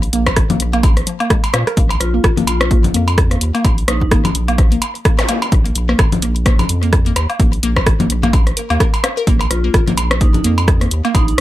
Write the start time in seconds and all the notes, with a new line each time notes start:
0.03 closed hi-hat
0.13 A#1 A#3, closed hi-hat
0.27 kick, cross-stick, closed hi-hat, cowbell
0.36 G#1, kick, cross-stick, closed hi-hat
0.50 A#3, closed hi-hat, low conga
0.60 A#1, closed hi-hat
0.73 A#3, closed hi-hat, low woodblock
0.83 kick, closed hi-hat, cowbell
0.97 cross-stick, closed hi-hat
1.07 F3, closed hi-hat
1.20 A#3, closed hi-hat, low woodblock
1.30 G#3, kick, cross-stick, closed hi-hat
1.44 closed hi-hat, cowbell
1.54 A#2, cross-stick, closed hi-hat, low woodblock
1.67 A#4, cross-stick, closed hi-hat
1.77 A#1 A#3, kick, closed hi-hat
1.90 closed hi-hat, cowbell
2.00 A#1 F4, cross-stick, closed hi-hat
2.14 A#3 F4
2.24 G#1, kick, cross-stick, closed hi-hat
2.37 A#3, closed hi-hat, low conga
2.47 A#1 F4, closed hi-hat, cowbell
2.61 F4, cross-stick, closed hi-hat
2.71 A#3, kick, closed hi-hat
2.84 closed hi-hat, low conga
2.94 F2 A#3, closed hi-hat
3.08 closed hi-hat, cowbell
3.18 kick, cross-stick, closed hi-hat
3.31 A#3, cross-stick, closed hi-hat
3.41 D#2, closed hi-hat
3.55 A#3, closed hi-hat, low woodblock
3.65 A#1, kick, closed hi-hat, cowbell
3.78 closed hi-hat
3.88 A#1 A#3 D#4, cross-stick, closed hi-hat
4.01 D#4, kick
4.11 G#1 A#3, kick, cross-stick, closed hi-hat
4.25 closed hi-hat, cowbell, low conga
4.35 A#1, closed hi-hat
4.48 A#3, closed hi-hat, low woodblock
4.58 kick, cross-stick, closed hi-hat
4.72 A#3, closed hi-hat
4.82 closed hi-hat, cowbell
4.95 closed hi-hat
5.05 A#3, kick, cross-stick, closed hi-hat
5.19 cross-stick, closed hi-hat, zap
5.29 A#3, closed hi-hat, low woodblock
5.42 closed hi-hat, cowbell
5.52 A#1, kick, closed hi-hat
5.65 A#3, closed hi-hat
5.75 A#1, closed hi-hat
5.89 A#3, cross-stick
5.99 G#1, kick, cross-stick, closed hi-hat, cowbell
6.12 closed hi-hat, low conga
6.22 A#1 A#3, closed hi-hat
6.36 closed hi-hat
6.46 A#3, kick, cross-stick, closed hi-hat
6.59 closed hi-hat, cowbell, low conga
6.69 F2, closed hi-hat
6.83 A#3, closed hi-hat
6.93 kick, cross-stick, closed hi-hat
7.06 A#3, closed hi-hat
7.16 D#2, cross-stick, closed hi-hat, cowbell
7.30 closed hi-hat, low woodblock
7.40 A#1 A#3, kick, closed hi-hat
7.53 closed hi-hat
7.63 A#1 A#3, closed hi-hat
7.76 kick, cross-stick, cowbell
7.86 G#1, kick, cross-stick, closed hi-hat
8.00 A#3, closed hi-hat, low conga
8.10 A#1, closed hi-hat
8.23 A#3, closed hi-hat, low conga, low woodblock
8.33 kick, closed hi-hat, cowbell
8.47 cross-stick, closed hi-hat
8.57 A#4, closed hi-hat
8.70 D#2 A#3, closed hi-hat, low woodblock
8.80 A#4, kick, cross-stick, closed hi-hat
8.94 closed hi-hat, cowbell
9.04 cross-stick, closed hi-hat, low woodblock
9.17 A#4, closed hi-hat
9.27 A#1 A#3, kick, closed hi-hat
9.41 closed hi-hat, cowbell
9.51 A#1 F4, cross-stick, closed hi-hat
9.64 A#3 F4
9.74 G#1, kick, cross-stick, closed hi-hat
9.87 A#3, closed hi-hat, low conga
9.97 A#1, closed hi-hat, cowbell
10.11 cross-stick, closed hi-hat
10.21 A#3 D#4, kick, closed hi-hat
10.34 D#4, closed hi-hat, low conga
10.44 F2 A#3, closed hi-hat
10.58 closed hi-hat, cowbell
10.68 kick, cross-stick, closed hi-hat
10.81 A#3, cross-stick, closed hi-hat
10.91 D#2, closed hi-hat
11.05 A#3, closed hi-hat, low woodblock
11.15 A#1 D#4, kick, closed hi-hat, cowbell
11.28 D#4, closed hi-hat